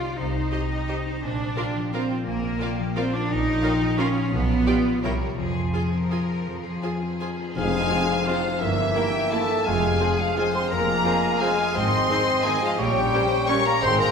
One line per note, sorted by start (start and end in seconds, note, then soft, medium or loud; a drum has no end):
0.00 0.18 C3 medium
0.00 0.71 G3 soft
0.00 0.53 D#4 soft
0.00 0.17 F4 medium
0.00 0.88 G4 soft
0.00 0.35 C5 soft
0.00 0.18 D5 medium
0.18 0.47 C2 medium
0.18 1.24 C3 medium
0.18 1.22 D#4 medium
0.18 0.52 C5 medium
0.36 1.24 C5 soft
0.52 1.05 D#4 soft
0.52 0.61 G4 medium
0.52 0.60 C5 medium
0.52 0.60 D#5 medium
0.52 0.90 D#5 medium
0.72 1.24 G3 soft
0.88 0.97 G4 soft
0.88 1.24 G4 soft
0.88 0.96 C5 medium
0.88 1.57 C5 medium
0.88 0.97 D#5 medium
1.06 1.24 D#4 soft
1.23 1.51 A#1 medium
1.23 2.26 A#2 medium
1.23 1.92 D4 medium
1.40 2.42 D5 soft
1.56 1.64 F4 medium
1.56 2.09 F4 soft
1.56 1.93 G4 medium
1.56 1.64 A#4 medium
1.56 1.65 D5 medium
1.56 1.65 F5 medium
1.75 2.78 F3 soft
1.93 2.27 C4 medium
1.93 2.01 F4 medium
1.93 2.27 F4 medium
1.93 2.95 A#4 medium
1.93 2.02 A#4 medium
1.93 2.01 D5 medium
1.93 2.01 F5 medium
2.10 2.60 F4 medium
2.26 2.55 A#1 medium
2.26 3.29 A#2 medium
2.26 2.95 A#3 medium
2.26 2.60 A#4 medium
2.43 3.31 D5 medium
2.60 2.69 F4 medium
2.60 3.13 F4 medium
2.60 2.96 G4 medium
2.60 2.68 A#4 medium
2.60 2.69 D5 medium
2.60 2.69 F5 medium
2.79 3.81 F3 medium
2.95 3.13 C4 loud
2.95 3.03 F4 medium
2.95 3.30 F4 medium
2.95 3.03 A#4 medium
2.95 3.98 A#4 medium
2.95 3.04 D5 medium
2.95 3.04 F5 medium
3.14 3.30 D4 loud
3.14 3.62 F4 medium
3.30 3.58 A#1 medium
3.30 4.34 A#2 medium
3.30 3.99 D#4 loud
3.30 3.64 A#4 medium
3.47 4.34 C#5 medium
3.63 3.71 F4 medium
3.63 4.15 F4 medium
3.63 3.99 G4 medium
3.63 3.71 A#4 medium
3.63 3.71 C#5 medium
3.63 3.71 F5 medium
3.82 5.05 F3 medium
3.99 4.33 C#4 loud
3.99 4.07 F4 medium
3.99 5.04 F4 medium
3.99 4.07 A#4 medium
3.99 4.34 A#4 medium
3.99 4.07 C#5 medium
3.99 4.07 F5 medium
4.16 4.65 F4 medium
4.32 4.61 B1 medium
4.32 5.05 B2 medium
4.32 5.02 B3 loud
4.49 5.05 D5 medium
4.67 4.75 F4 medium
4.67 5.05 F4 medium
4.67 4.75 G4 medium
4.67 4.75 D5 medium
4.67 4.75 G5 medium
4.85 5.05 B3 medium
5.03 5.33 C2 medium
5.03 5.39 C3 medium
5.03 5.38 G3 medium
5.03 5.12 E4 medium
5.03 5.38 A#4 medium
5.03 5.12 A#4 medium
5.03 5.12 C#5 medium
5.03 5.12 G5 medium
5.21 5.40 A#4 soft
5.21 5.40 C#5 soft
5.38 5.68 F2 medium
5.38 6.46 F3 medium
5.38 7.39 F3 medium
5.38 5.70 G#4 medium
5.56 6.64 C5 soft
5.74 5.82 F4 soft
5.74 6.28 F4 soft
5.74 5.82 G#4 medium
5.74 5.92 G#4 medium
5.74 5.82 C5 medium
5.74 5.82 G#5 medium
5.93 7.01 C4 soft
5.93 6.65 A#4 medium
6.11 6.19 F4 soft
6.11 6.19 G#4 soft
6.11 7.19 G#4 soft
6.11 6.19 C5 medium
6.11 6.19 G#5 medium
6.30 6.82 F4 soft
6.47 6.77 F2 medium
6.47 7.55 F3 medium
6.65 7.56 G#4 medium
6.65 7.90 C5 soft
6.83 7.38 F4 soft
6.83 6.91 F4 soft
6.83 6.91 G#4 soft
6.83 6.91 C5 soft
6.83 6.91 G#5 soft
7.02 8.62 C4 soft
7.20 7.29 F4 soft
7.20 8.43 G#4 soft
7.20 7.29 G#4 soft
7.20 7.28 C5 soft
7.20 7.28 G#5 soft
7.39 7.72 F4 soft
7.55 7.85 F1 medium
7.55 7.85 F2 medium
7.55 8.63 F3 medium
7.55 8.23 G#3 medium
7.55 8.23 C4 medium
7.55 8.29 G#4 medium
7.55 8.23 F5 medium
7.55 8.23 G#5 medium
7.55 8.23 G#5 loud
7.55 tam-tam medium
7.73 8.62 F4 soft
7.91 8.04 F3 medium
7.91 7.99 G#3 medium
7.91 8.04 C4 medium
7.91 7.99 F4 medium
7.91 8.26 C5 medium
8.09 8.62 F5 medium
8.26 8.61 F3 medium
8.26 8.40 F3 medium
8.26 8.35 G#3 medium
8.26 8.63 C4 medium
8.26 8.40 C4 medium
8.26 8.35 F4 medium
8.26 8.62 F4 medium
8.26 8.61 C5 medium
8.26 8.62 C5 medium
8.26 8.61 F5 medium
8.26 8.60 F5 medium
8.44 8.62 G#4 medium
8.60 8.90 G1 medium
8.60 9.68 G2 medium
8.60 8.90 G2 medium
8.60 9.31 E3 medium
8.60 9.68 A#3 medium
8.60 9.33 E4 medium
8.60 9.32 E5 medium
8.60 9.32 E5 loud
8.60 9.67 E5 medium
8.60 8.96 E5 medium
8.78 9.68 E4 medium
8.95 9.09 E3 medium
8.95 9.03 A#3 medium
8.95 9.09 A#3 medium
8.95 9.03 E4 medium
8.95 9.31 A#4 medium
8.95 9.32 G5 medium
9.14 9.68 E5 medium
9.31 9.44 E3 medium
9.31 9.66 A3 medium
9.31 9.44 A#3 medium
9.31 9.40 A#3 medium
9.31 9.40 E4 medium
9.31 9.68 A4 medium
9.31 9.68 A#4 medium
9.31 9.66 E5 medium
9.31 9.66 A5 medium
9.31 9.67 A5 medium
9.50 9.68 G4 medium
9.65 9.95 F1 medium
9.65 10.70 F2 medium
9.65 9.95 F2 medium
9.65 10.19 G#3 medium
9.65 10.37 G#3 medium
9.65 10.21 G#4 medium
9.65 10.36 F5 medium
9.65 10.00 F5 medium
9.65 10.19 G#5 medium
9.83 10.87 F4 medium
10.00 10.13 F3 medium
10.00 10.14 G#3 medium
10.00 10.09 C4 medium
10.00 10.09 F4 medium
10.00 10.38 G#4 medium
10.00 10.36 C5 medium
10.19 10.38 F3 medium
10.19 10.39 F4 medium
10.19 11.22 F5 medium
10.19 10.37 F5 medium
10.19 10.38 F5 medium
10.37 10.50 F3 medium
10.37 11.39 G#3 medium
10.37 10.50 G#3 medium
10.37 10.55 G#3 medium
10.37 10.45 C4 medium
10.37 10.45 F4 medium
10.37 10.56 G#4 medium
10.37 11.04 C5 medium
10.37 10.71 C5 medium
10.37 11.39 F5 medium
10.37 10.55 G#5 medium
10.37 10.43 G#5 medium
10.53 10.72 C4 medium
10.53 11.58 G#4 medium
10.53 10.71 C5 medium
10.53 10.71 C6 loud
10.53 10.61 C6 medium
10.70 10.99 F1 medium
10.70 11.76 F2 medium
10.70 11.00 F2 medium
10.70 11.41 A#3 medium
10.70 11.05 A#4 medium
10.70 11.43 A#4 medium
10.70 11.39 A#5 loud
10.70 11.40 A#5 medium
10.88 11.76 F4 soft
11.05 11.18 F3 medium
11.05 11.18 G#3 medium
11.05 11.13 C4 medium
11.05 11.13 F4 medium
11.05 11.41 G#4 medium
11.05 11.40 C5 medium
11.24 11.76 F5 medium
11.41 11.54 F3 medium
11.41 11.54 G#3 medium
11.41 11.75 G#3 medium
11.41 11.49 C4 medium
11.41 11.50 F4 medium
11.41 11.76 G#4 medium
11.41 12.08 C5 medium
11.41 11.76 F5 medium
11.41 11.75 F5 medium
11.41 11.75 G#5 medium
11.59 12.62 G#4 medium
11.74 12.03 G#1 medium
11.74 12.80 G#2 medium
11.74 12.04 G#2 medium
11.74 12.45 G#3 medium
11.74 12.46 C4 loud
11.74 12.47 C5 medium
11.74 12.45 D#5 medium
11.74 12.08 D#5 medium
11.74 12.45 C6 loud
11.74 12.44 C6 medium
11.91 12.80 D#4 medium
12.09 12.23 D#3 medium
12.09 12.23 G#3 medium
12.09 12.18 C4 medium
12.09 12.18 D#4 medium
12.09 12.45 C5 medium
12.09 12.78 D#5 medium
12.28 12.81 D#5 medium
12.45 12.58 D#3 medium
12.45 12.63 G#3 medium
12.45 12.81 G#3 medium
12.45 12.58 G#3 medium
12.45 12.54 C4 medium
12.45 12.54 D#4 medium
12.45 12.64 G#4 medium
12.45 12.81 C5 medium
12.45 12.80 D#5 medium
12.45 12.63 G#5 loud
12.45 12.63 G#5 medium
12.62 12.78 F3 medium
12.62 12.78 F4 medium
12.62 12.81 G#4 medium
12.62 12.79 F5 medium
12.62 12.70 F5 medium
12.78 13.08 A#1 medium
12.78 13.08 A#2 medium
12.78 13.84 A#2 medium
12.78 13.31 G3 medium
12.78 13.49 G3 medium
12.78 13.50 G4 medium
12.78 13.49 C#5 medium
12.78 13.14 C#5 medium
12.78 13.48 G5 loud
12.78 13.24 G5 medium
12.96 13.84 C#4 medium
13.13 13.27 C#3 medium
13.13 13.28 G3 medium
13.13 13.22 C#4 medium
13.13 13.22 G4 medium
13.13 13.49 A#4 medium
13.13 13.49 C5 medium
13.32 13.84 C#5 medium
13.48 13.62 C#3 medium
13.48 13.82 G3 medium
13.48 13.62 G3 medium
13.48 13.65 C#4 medium
13.48 13.57 C#4 medium
13.48 13.57 G4 medium
13.48 14.11 A#4 medium
13.48 13.84 A#4 medium
13.48 13.66 C#5 medium
13.48 13.84 C#5 medium
13.48 13.66 C#6 loud
13.48 13.67 C#6 medium
13.66 13.73 A#3 medium
13.66 13.84 G4 medium
13.66 13.74 A#4 medium
13.66 13.83 A#5 loud
13.66 13.73 A#5 loud
13.82 14.11 G#1 medium
13.82 14.11 G#2 medium
13.82 14.11 G#3 medium
13.82 13.99 C4 loud
13.82 14.01 C5 loud
13.82 14.11 C5 medium
13.82 13.99 C6 loud
13.99 14.11 A#3 medium
13.99 14.11 C4 medium
13.99 14.11 A#4 medium
13.99 14.11 A#5 loud